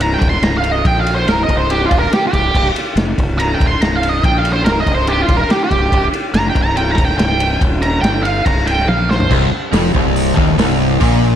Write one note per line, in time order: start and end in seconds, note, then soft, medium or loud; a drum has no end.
0.00 0.18 C1 loud
0.00 0.14 A#5 loud
0.00 ride loud
0.14 0.28 G5 loud
0.21 0.41 D#1 medium
0.21 kick loud
0.21 ride medium
0.29 0.43 C6 loud
0.33 snare soft
0.42 0.81 C1 loud
0.42 0.56 A#5 loud
0.42 snare loud
0.42 ride loud
0.57 0.72 F5 loud
0.64 ride medium
0.72 0.85 D#5 loud
0.85 1.24 A#1 loud
0.85 0.99 G5 loud
0.85 kick loud
0.85 ride loud
0.99 1.13 F5 medium
1.06 ride medium
1.14 1.29 C5 loud
1.26 1.46 C1 medium
1.26 1.41 A#4 loud
1.26 snare loud
1.26 ride loud
1.43 1.56 D#5 medium
1.49 1.88 C1 loud
1.49 kick loud
1.49 ride medium
1.57 1.70 C5 loud
1.70 1.86 G4 loud
1.70 ride loud
1.86 1.98 F4 loud
1.91 2.10 D#1 medium
1.91 kick loud
1.91 ride medium
1.98 2.12 A#4 loud
2.03 snare soft
2.12 2.26 G4 loud
2.12 muted fingered electric bass stroke soft
2.12 snare loud
2.12 ride loud
2.27 2.67 G4 loud
2.33 2.53 C1 medium
2.33 kick loud
2.33 ride medium
2.55 2.74 C1 medium
2.55 kick loud
2.55 crash loud
2.75 muted fingered electric bass stroke soft
2.75 ride medium
2.96 3.15 F1 loud
2.96 snare loud
2.96 ride loud
3.18 3.57 C1 loud
3.18 kick loud
3.18 ride medium
3.39 3.54 A#5 loud
3.39 ride loud
3.54 3.67 G5 loud
3.60 3.80 D#1 medium
3.60 kick loud
3.60 ride medium
3.67 3.81 C6 loud
3.81 4.20 C1 medium
3.81 3.95 A#5 loud
3.81 snare loud
3.81 ride loud
3.96 4.09 F5 medium
4.03 ride medium
4.09 4.23 D#5 loud
4.23 4.63 A#1 medium
4.23 4.37 G5 loud
4.23 kick loud
4.23 ride loud
4.38 4.51 F5 loud
4.45 ride medium
4.52 4.65 C5 loud
4.65 4.85 C1 medium
4.65 4.79 A#4 loud
4.65 snare loud
4.65 ride loud
4.80 4.93 D#5 loud
4.87 5.26 C1 loud
4.87 kick loud
4.87 ride medium
4.94 5.07 C5 medium
5.07 5.22 G4 medium
5.07 ride loud
5.22 5.35 F4 loud
5.29 5.48 D#1 loud
5.29 kick loud
5.29 ride medium
5.37 5.50 A#4 loud
5.49 5.63 G4 loud
5.49 muted fingered electric bass stroke soft
5.49 snare loud
5.49 ride medium
5.64 6.05 G4 loud
5.71 5.91 C1 loud
5.71 kick loud
5.71 ride medium
5.92 6.12 C1 medium
5.92 kick loud
5.92 ride loud
6.12 muted fingered electric bass stroke soft
6.12 ride medium
6.34 6.54 F1 medium
6.34 6.48 A#5 loud
6.34 snare loud
6.34 ride loud
6.50 6.62 G5 loud
6.55 6.95 C1 loud
6.55 kick loud
6.55 ride medium
6.62 6.76 A#5 loud
6.77 6.90 G5 loud
6.77 ride loud
6.91 7.05 A#5 loud
6.98 7.17 D#1 medium
6.98 kick loud
6.98 ride medium
7.05 7.17 G5 medium
7.10 snare soft
7.18 7.57 C1 loud
7.18 7.59 G5 loud
7.18 snare loud
7.18 ride loud
7.40 ride medium
7.61 8.00 D#1 medium
7.61 kick loud
7.61 ride loud
7.82 8.01 A#5 loud
7.82 ride medium
8.01 8.42 G1 medium
8.01 8.23 G5 medium
8.01 snare loud
8.01 ride loud
8.23 8.44 F5 medium
8.23 ride medium
8.45 8.85 C1 loud
8.45 8.66 A#5 loud
8.45 kick loud
8.45 ride loud
8.67 8.88 G5 loud
8.67 ride medium
8.79 snare soft
8.87 9.27 A#1 medium
8.87 9.09 F5 loud
8.87 high tom medium
9.10 9.30 C5 loud
9.10 snare medium
9.20 floor tom loud
9.31 9.50 C1 medium
9.31 9.51 C2 loud
9.31 kick loud
9.31 crash loud
9.51 muted fingered electric bass stroke soft
9.51 muted overdriven electric guitar stroke medium
9.73 9.92 F1 medium
9.73 9.93 F2 loud
9.73 snare loud
9.73 open hi-hat medium
9.94 10.34 C1 loud
9.94 10.36 C2 loud
9.94 kick loud
10.16 open hi-hat medium
10.36 10.57 D#1 medium
10.36 10.57 D#2 loud
10.36 kick loud
10.49 snare soft
10.58 10.97 C1 medium
10.58 11.00 C2 loud
10.58 snare loud
10.58 open hi-hat medium
11.00 11.36 A#1 medium
11.00 11.36 A#2 loud
11.00 kick loud
11.00 open hi-hat medium